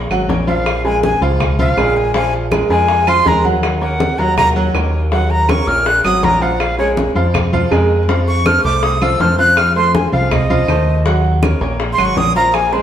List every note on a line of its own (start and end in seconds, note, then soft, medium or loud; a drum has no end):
0.09 0.27 G#1 medium
0.09 0.26 F#3 medium
0.09 0.26 F#4 medium
0.09 0.26 F#5 medium
0.09 high bongo soft
0.09 high conga soft
0.09 claves medium
0.28 1.16 A#1 loud
0.28 0.44 A#3 medium
0.28 0.44 A#4 medium
0.28 0.44 C#5 medium
0.28 high bongo soft
0.28 low bongo medium
0.28 high conga medium
0.47 0.78 F3 medium
0.47 0.78 F4 medium
0.47 0.82 F5 medium
0.47 0.78 F5 medium
0.47 high conga medium
0.66 high bongo medium
0.66 high conga soft
0.66 claves medium
0.85 1.15 G#3 medium
0.85 1.15 G#4 medium
0.85 1.15 A#4 medium
0.85 1.02 G#5 medium
0.85 high bongo soft
0.85 high conga soft
1.03 1.21 G#5 medium
1.03 high bongo medium
1.03 high conga medium
1.21 1.73 C#2 loud
1.21 1.52 F3 medium
1.21 1.52 F4 medium
1.21 1.52 F5 medium
1.21 high bongo soft
1.21 high conga soft
1.40 high bongo medium
1.40 high conga soft
1.40 low conga medium
1.40 claves medium
1.59 1.74 F3 medium
1.59 1.74 F4 medium
1.59 1.74 F5 medium
1.59 1.98 F5 medium
1.59 high bongo soft
1.59 high conga soft
1.59 low conga medium
1.77 2.64 A#1 loud
1.77 2.08 G#3 medium
1.77 2.08 G#4 medium
1.77 2.08 A#4 medium
1.77 high bongo soft
1.77 low bongo medium
1.77 high conga soft
1.77 claves medium
1.96 2.15 G#5 medium
1.96 high conga soft
2.14 2.45 F3 medium
2.14 2.45 F4 medium
2.14 2.45 F5 medium
2.14 2.32 G#5 medium
2.14 high bongo medium
2.14 high conga soft
2.33 high bongo soft
2.33 high conga soft
2.51 2.67 G#3 medium
2.51 2.67 G#4 medium
2.51 2.67 A#4 medium
2.51 high bongo medium
2.51 high conga medium
2.51 claves medium
2.70 3.22 F2 medium
2.70 3.01 G#3 medium
2.70 3.01 G#4 medium
2.70 3.01 A#4 medium
2.70 3.10 G#5 medium
2.70 high bongo soft
2.70 high conga soft
2.88 high bongo medium
2.88 high conga soft
3.07 3.23 F3 medium
3.07 3.23 F4 medium
3.07 3.23 F5 medium
3.07 3.29 C6 loud
3.07 high bongo soft
3.07 high conga soft
3.07 claves medium
3.25 4.13 D#2 loud
3.25 3.41 G#3 medium
3.25 3.41 G#4 medium
3.25 3.41 A#4 medium
3.25 3.45 A#5 loud
3.25 high bongo soft
3.25 low bongo medium
3.25 high conga medium
3.44 3.75 F#3 medium
3.44 3.75 F#4 medium
3.44 3.75 F#5 medium
3.44 high conga medium
3.63 high bongo medium
3.63 high conga soft
3.63 claves medium
3.81 4.12 A#3 medium
3.81 4.12 A#4 medium
3.81 4.12 C#5 medium
3.81 4.20 F#5 medium
3.81 high bongo soft
3.81 high conga soft
4.00 high bongo medium
4.00 high conga loud
4.18 4.70 D#2 medium
4.18 4.49 F#3 medium
4.18 4.49 F#4 medium
4.18 4.50 F#5 medium
4.18 4.37 A#5 medium
4.18 high bongo soft
4.18 high conga soft
4.37 4.48 A#5 loud
4.37 high bongo medium
4.37 high conga soft
4.37 low conga medium
4.37 claves medium
4.56 4.71 F#3 loud
4.56 4.71 F#4 medium
4.56 4.71 F#5 medium
4.56 high bongo soft
4.74 5.61 D#2 loud
4.74 5.05 A#3 medium
4.74 5.05 A#4 medium
4.74 5.05 C#5 medium
4.74 high bongo soft
4.74 low bongo medium
4.74 high conga soft
4.74 claves medium
4.93 high conga soft
5.12 5.42 F#3 medium
5.12 5.42 F#4 medium
5.12 5.32 F#5 medium
5.12 5.43 F#5 medium
5.12 high bongo medium
5.12 high conga soft
5.30 5.51 A#5 loud
5.30 high bongo soft
5.30 high conga soft
5.49 5.64 A#3 medium
5.49 5.64 A#4 medium
5.49 5.65 C#5 medium
5.49 5.69 C#6 medium
5.49 high bongo medium
5.49 high conga loud
5.49 claves medium
5.67 6.02 A#1 loud
5.67 5.98 A#3 medium
5.67 5.98 A#4 medium
5.67 5.98 C#5 medium
5.67 5.88 F6 loud
5.67 high bongo soft
5.67 high conga soft
5.86 6.04 F#6 loud
5.86 high bongo medium
5.86 high conga soft
6.04 6.22 G#1 medium
6.04 6.20 F#3 loud
6.04 6.20 F#4 medium
6.04 6.20 F#5 medium
6.04 6.26 D#6 loud
6.04 high bongo soft
6.04 high conga soft
6.04 claves medium
6.23 7.10 A#1 loud
6.23 6.38 A#3 medium
6.23 6.38 A#4 medium
6.23 6.38 C#5 medium
6.23 6.43 A#5 medium
6.23 high bongo soft
6.23 low bongo medium
6.23 high conga medium
6.42 6.72 F3 medium
6.42 6.72 F4 medium
6.42 6.72 F5 medium
6.42 6.62 F#5 medium
6.60 6.78 F5 medium
6.60 high bongo medium
6.60 high conga soft
6.60 claves medium
6.78 7.09 G#3 medium
6.78 7.09 G#4 medium
6.78 7.10 A#4 medium
6.78 6.90 C#5 medium
6.78 high bongo soft
6.78 high conga soft
6.97 high bongo medium
6.97 high conga medium
7.15 7.67 F2 medium
7.15 7.46 F3 medium
7.15 7.46 F4 medium
7.15 7.46 F5 medium
7.15 high bongo soft
7.15 high conga soft
7.34 high bongo medium
7.34 high conga soft
7.34 low conga medium
7.34 claves medium
7.53 7.68 F3 medium
7.53 7.68 F4 medium
7.53 7.69 F5 loud
7.53 high bongo soft
7.53 high conga soft
7.53 low conga medium
7.71 8.59 F2 loud
7.71 8.02 G#3 medium
7.71 8.02 G#4 medium
7.71 8.02 A#4 medium
7.71 high bongo soft
7.71 low bongo medium
7.71 high conga soft
7.71 claves medium
7.90 high conga soft
8.08 8.39 F3 medium
8.08 8.39 F4 medium
8.08 8.39 F5 medium
8.08 high bongo medium
8.08 high conga soft
8.28 8.48 C#6 medium
8.28 high bongo soft
8.28 high conga soft
8.45 8.61 A3 medium
8.45 8.61 A4 medium
8.45 8.61 C5 medium
8.45 8.64 F6 loud
8.45 high bongo medium
8.45 high conga medium
8.45 claves medium
8.64 9.16 C2 medium
8.64 8.95 A3 medium
8.64 8.95 A4 medium
8.64 8.95 C5 medium
8.64 8.85 D6 loud
8.64 high bongo soft
8.64 high conga soft
8.83 9.04 D#6 medium
8.83 high bongo medium
8.83 high conga soft
9.01 9.17 F3 loud
9.01 9.17 F4 medium
9.01 9.17 F5 loud
9.01 9.22 E6 medium
9.01 high bongo soft
9.01 high conga soft
9.01 claves medium
9.20 10.07 F2 medium
9.20 9.35 A3 medium
9.20 9.35 A4 medium
9.20 9.36 C5 medium
9.20 9.38 F6 medium
9.20 high bongo soft
9.20 low bongo medium
9.20 high conga medium
9.38 9.69 F3 medium
9.38 9.69 F4 medium
9.38 9.69 F5 medium
9.38 9.59 F#6 loud
9.57 9.75 F6 medium
9.57 high bongo medium
9.57 high conga soft
9.57 claves medium
9.76 10.06 A3 medium
9.76 10.06 A4 medium
9.76 10.06 C5 medium
9.76 9.97 C6 medium
9.76 high bongo soft
9.76 high conga soft
9.94 10.12 G#5 medium
9.94 high bongo medium
9.94 high conga medium
10.12 10.64 C2 medium
10.12 10.43 F3 medium
10.12 10.43 F4 medium
10.12 10.34 F5 medium
10.12 10.43 F5 medium
10.12 high bongo soft
10.12 high conga soft
10.31 11.06 D#5 medium
10.31 high bongo medium
10.31 high conga soft
10.31 low conga loud
10.31 claves medium
10.50 10.65 F3 medium
10.50 10.65 F4 medium
10.50 10.65 F5 medium
10.50 high bongo soft
10.50 high conga soft
10.50 low conga medium
10.68 11.55 D#2 medium
10.68 10.99 A3 medium
10.68 10.99 A4 medium
10.68 10.99 C5 medium
10.68 high bongo soft
10.68 low bongo medium
10.68 high conga soft
10.68 claves medium
10.87 high conga soft
11.05 11.36 F#3 medium
11.05 11.36 F#4 medium
11.05 11.36 F#5 medium
11.05 high bongo medium
11.05 high conga soft
11.24 high bongo soft
11.24 high conga soft
11.43 11.58 A#3 medium
11.43 11.58 A#4 medium
11.43 11.58 C#5 medium
11.43 high bongo medium
11.43 high conga loud
11.43 claves medium
11.61 11.95 A#1 loud
11.61 11.91 A#3 medium
11.61 11.92 A#4 medium
11.61 11.92 C#5 medium
11.61 high bongo soft
11.61 high conga soft
11.80 high bongo medium
11.80 high conga soft
11.93 12.07 C6 medium
11.98 12.15 G#1 medium
11.98 12.13 F#3 medium
11.98 12.13 F#4 medium
11.98 12.13 F#5 loud
11.98 high bongo soft
11.98 high conga soft
11.98 claves medium
12.05 12.19 C#6 loud
12.16 12.82 A#1 loud
12.16 12.32 A#3 medium
12.16 12.32 A#4 medium
12.16 12.32 C#5 medium
12.16 12.35 D#6 loud
12.16 high bongo soft
12.16 low bongo medium
12.16 high conga medium
12.36 12.66 F3 medium
12.36 12.66 F4 medium
12.36 12.66 F5 medium
12.36 12.56 A#5 medium
12.54 12.74 G#5 medium
12.54 high bongo medium
12.54 high conga soft
12.54 claves medium
12.72 12.82 G#3 medium
12.72 12.82 G#4 medium
12.72 12.82 A#4 medium
12.72 12.82 C5 medium
12.72 high bongo soft
12.72 high conga soft